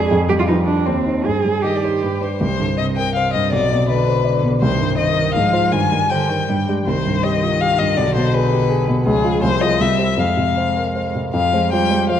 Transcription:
Already playing: grand piano F2 F3 G#3 D4, cello G#4
0.11 grand piano F2
0.29 grand piano G3, cello G4
0.40 cello F4
0.48 grand piano F3, cello D#4, violin B4
0.66 cello D4, grand piano D4
0.86 grand piano D#2, cello C4, violin C5
1.06 grand piano D#4 C5
1.25 grand piano G2, cello G#4
1.45 grand piano G3
1.63 grand piano D#3, cello G4, violin D#5
1.76 violin D5
1.83 grand piano D#4, violin C5
2.03 grand piano G2, violin B4
2.21 grand piano D4 B4, violin C5
2.40 grand piano C2, cello D#3, violin C5
2.60 grand piano G2, cello D3
2.78 cello C3, grand piano C5, violin D#5
2.96 grand piano A#4, violin G5
3.15 cello C3, grand piano C5, violin F5
3.33 grand piano G2, violin D#5
3.52 grand piano B1, violin D5
3.72 grand piano B2
3.89 cello D3, violin B4, grand piano D5
4.08 grand piano C5
4.25 cello D3, grand piano D5
4.43 grand piano B2
4.61 grand piano C2, cello D#3, violin C5
4.79 grand piano G2
4.97 cello D#3, grand piano C5, violin D#5
5.16 grand piano A#4
5.34 grand piano G#2, cello F3, violin F5
5.53 grand piano F4 C5
5.71 grand piano G2, cello D#3, violin G#5
5.91 grand piano G3
6.09 cello D3, grand piano C5, violin G5
6.29 cello D#3, grand piano A#4
6.48 grand piano G2, cello G3
6.67 cello G#3, grand piano D4 G4
6.86 grand piano C2, cello D#3, violin C5
7.06 grand piano G2
7.23 grand piano G4, violin D#5
7.43 grand piano F4
7.60 grand piano G4, violin F5
7.78 grand piano G2, violin D#5
7.97 grand piano B1, cello D3, violin D5
8.15 grand piano B2, violin C5
8.33 grand piano G#4, violin B4
8.52 grand piano G4
8.69 grand piano G#4
8.88 grand piano B2
9.06 grand piano C#2, cello F3, violin G#4
9.25 grand piano F4 G#4
9.43 grand piano C2, violin C5
9.62 grand piano F4 G#4, violin D#5
9.79 grand piano C2, cello G3, violin E5
9.98 grand piano G4 C5
10.17 grand piano F2, cello G#3, violin F5
10.37 grand piano C3
10.57 grand piano C5
10.77 grand piano A#4
10.95 grand piano C5
11.15 grand piano C3
11.33 grand piano F2, cello F3, violin F5
11.53 grand piano G#3 C5
11.71 cello G3, grand piano F4 C5, violin G5
11.91 grand piano G#3 C5
12.09 cello F3, grand piano F4 C5, violin F5

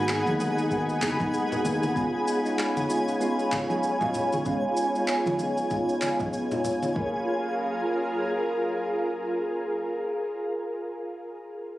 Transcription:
Already playing: fingered electric bass G#1, synth keys G#3 A#3 B3 D#4 F#4, ambient pad D#4 G#4 F#5 B5, synth texture G#4 G#5
0.09 clap, shaker
0.26 fingered electric bass D#2, high conga, low conga, shaker
0.39 synth keys G#3 A#3 B3 D#4 F#4, low conga, shaker
0.58 shaker
0.70 synth keys G#3 A#3 B3 D#4 F#4, kick, shaker
0.89 shaker
1.02 fingered electric bass F#1, clap, high conga, shaker
1.19 synth keys G#3 A#3 B3 D#4 G#4, kick, low conga, shaker
1.34 shaker
1.50 synth keys G#3 A#3 B3 D#4 F#4, low conga, shaker
1.65 fingered electric bass D#2, low conga, shaker
1.83 high conga, shaker
1.95 synth keys G#3 B3 C#4 D#4 F4, ambient pad F4 C#5 G#5, kick, shaker
2.28 shaker
2.44 synth keys G#3 B3 C#4 D#4 F4, shaker
2.59 clap, shaker
2.77 high conga, shaker
2.89 synth keys G#3 B3 C#4 D#4 F4, shaker
3.08 shaker
3.20 synth keys G#3 B3 C#4 D#4 F4, shaker
3.39 shaker
3.52 kick, clap, high conga, shaker
3.69 synth keys G#3 B3 C#4 D#4 G#4, low conga, shaker
3.83 shaker
4.00 synth keys G#3 B3 C#4 D#4 F4, low conga, shaker
4.14 low conga, shaker
4.32 high conga, shaker
4.45 synth keys G#3 B3 C#4 D#4 F4, kick, shaker
4.77 shaker
4.94 synth keys G#3 B3 C#4 D#4 F4, shaker
5.08 clap, shaker
5.26 high conga, low conga, shaker
5.39 synth keys G#3 B3 C#4 D#4 F4, low conga, shaker
5.57 shaker
5.70 synth keys G#3 B3 C#4 D#4 F4, kick, shaker
5.89 shaker
6.01 clap, high conga, shaker
6.19 synth keys G#3 B3 C#4 D#4 G#4, kick, low conga, shaker
6.33 shaker
6.51 synth keys G#3 B3 C#4 D#4 F4, low conga, shaker
6.64 low conga, shaker
6.83 high conga, shaker
6.94 synth keys F#3 A#3 C#4, ambient pad F4 G#4 A#4, kick
6.98 synth keys F4 G#4

